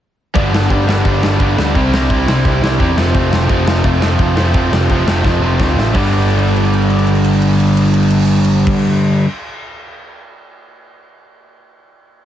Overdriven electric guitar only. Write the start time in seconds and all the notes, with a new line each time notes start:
0.34 G2 D3 G3 B3 D4
0.52 G2 D3 G3 B3 D4
0.69 G2 D3 G3 B3 D4
0.87 G2 D3 G3 B3 D4
1.05 G2 D3 G3 B3 D4
1.22 G2 D3 G3 B3 D4
1.40 G2 D3 G3 B3 D4
1.57 G2 D3 G3 B3 D4
1.74 C3 G3 C4 E4
1.93 C3 G3 C4 E4
2.10 C3 G3 C4 E4
2.28 C3 G3 C4 E4
2.45 C3 G3 C4 E4
2.62 C3 G3 C4 E4
2.79 C3 G3 C4 E4
2.97 F2 C3 F3 A3 C4
3.13 F2 C3 F3 A3 C4
3.31 F2 C3 F3 A3 C4
3.49 F2 C3 F3 A3 C4
3.66 F2 C3 F3 A3 C4
3.84 F2 C3 F3 A3 C4
4.01 F2 C3 F3 A3 C4
4.19 F2 C3 F3 A3 C4
4.35 F2 C3 F3 A3 C4
4.53 F2 C3 F3 A3 C4
4.71 F2 C3 F3 A3 C4
4.89 F2 C3 F3 A3 C4
5.06 F2 C3 F3 A3 C4
5.24 F2 C3 F3 A3 C4
5.42 F2 C3 F3 A3 C4
5.59 F2 C3 F3 A3 C4
5.76 F2 C3 F3 A3 C4
5.93 G2 D3 G3 B3 D4
5.98 G4